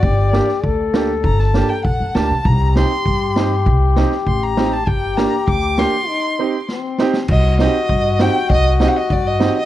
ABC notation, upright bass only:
X:1
M:2/4
L:1/16
Q:1/4=99
K:none
V:1 name="Upright bass" clef=bass
G,,,4 D,,4 | G,,,4 _B,,, ^F,, D,, C,, | C,,4 G,,4 | C,,4 A,,,4 |
G,,,4 D,,4 | z8 | C,,4 G,,4 | C,,4 G,,4 |]